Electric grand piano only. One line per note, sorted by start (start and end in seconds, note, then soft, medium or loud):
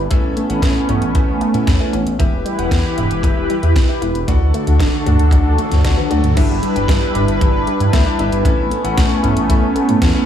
0.10 0.46 C#4 medium
0.10 0.47 E4 medium
0.10 0.46 A4 medium
0.10 0.47 B4 medium
0.10 0.47 E5 loud
0.50 0.86 C#4 medium
0.50 0.86 E4 medium
0.50 0.86 A4 medium
0.50 0.86 B4 medium
0.50 0.86 F#5 medium
0.89 1.12 C#4 medium
0.89 1.12 E4 medium
0.89 1.12 A4 medium
0.89 1.12 B4 medium
0.89 1.12 E5 medium
1.15 1.34 C#4 medium
1.15 1.34 E4 medium
1.15 1.34 A4 medium
1.15 1.34 B4 medium
1.15 1.34 E5 medium
1.54 1.77 C#4 medium
1.54 1.77 E4 medium
1.54 1.77 A4 medium
1.54 1.77 B4 medium
1.54 1.77 E5 medium
1.80 1.92 C#4 medium
1.80 1.92 E4 medium
1.80 1.92 A4 medium
1.80 1.92 B4 medium
1.80 1.92 E5 loud
2.19 2.55 G4 loud
2.19 2.55 B4 medium
2.19 2.55 E5 loud
2.58 2.94 G4 medium
2.58 2.94 B4 medium
2.58 2.94 F#5 medium
2.97 3.20 G4 medium
2.97 3.20 B4 medium
2.97 3.20 E5 medium
3.23 3.42 G4 medium
3.23 3.42 B4 medium
3.23 3.42 E5 medium
3.63 3.86 G4 medium
3.63 3.86 B4 medium
3.63 3.86 E5 medium
3.89 4.00 G4 medium
3.89 4.00 B4 medium
3.89 4.01 E5 medium
4.28 4.64 F#4 loud
4.28 4.64 A4 medium
4.28 4.64 D5 loud
4.67 5.03 F#4 medium
4.67 5.03 A4 medium
4.67 5.03 E5 medium
5.06 5.29 F#4 medium
5.06 5.29 A4 medium
5.06 5.29 D5 medium
5.32 5.51 F#4 medium
5.32 5.51 A4 medium
5.32 5.51 D5 medium
5.85 5.96 F#4 medium
5.85 5.96 A4 medium
5.85 5.96 D5 loud
5.97 6.07 F#4 medium
5.97 6.07 A4 medium
5.97 6.07 B4 loud
6.10 6.34 F#4 medium
6.10 6.34 A4 medium
6.10 6.33 D5 loud
6.37 6.73 D4 medium
6.37 6.73 E4 medium
6.37 6.73 G4 medium
6.37 6.73 B4 medium
6.37 6.73 E5 loud
6.76 7.12 D4 medium
6.76 7.12 E4 medium
6.76 7.12 G4 medium
6.76 7.12 B4 medium
6.76 7.12 G5 medium
7.15 7.38 D4 medium
7.15 7.38 E4 medium
7.15 7.38 G4 medium
7.15 7.38 B4 medium
7.15 7.38 E5 medium
7.41 7.60 D4 medium
7.41 7.60 E4 medium
7.41 7.60 G4 medium
7.41 7.60 B4 medium
7.41 7.60 E5 medium
7.93 8.04 D4 loud
7.93 8.04 E4 medium
7.93 8.04 G4 medium
7.93 8.04 B4 medium
7.93 8.04 E5 loud
8.06 8.16 D4 medium
8.06 8.16 E4 medium
8.06 8.16 G4 medium
8.06 8.16 B4 medium
8.06 8.16 D5 loud
8.19 8.42 D4 loud
8.19 8.42 E4 medium
8.19 8.42 G4 medium
8.19 8.42 B4 medium
8.19 8.42 E5 loud
8.45 8.81 C#4 loud
8.45 8.81 E4 medium
8.45 8.81 A4 medium
8.45 8.81 B4 medium
8.45 8.81 E5 loud
8.84 9.20 C#4 medium
8.84 9.20 E4 medium
8.84 9.20 A4 medium
8.84 9.20 B4 medium
8.84 9.20 F#5 medium
9.23 9.46 C#4 medium
9.23 9.46 E4 medium
9.23 9.46 A4 medium
9.23 9.46 B4 medium
9.23 9.46 E5 medium
9.49 9.68 C#4 medium
9.49 9.68 E4 medium
9.49 9.68 A4 medium
9.49 9.68 B4 medium
9.49 9.68 E5 medium
10.02 10.13 C#4 loud
10.02 10.13 E4 medium
10.02 10.13 A4 medium
10.02 10.13 B4 medium
10.02 10.13 E5 loud
10.15 10.25 C#4 medium
10.15 10.25 E4 medium
10.15 10.25 A4 medium
10.15 10.25 B4 medium
10.15 10.25 C#5 loud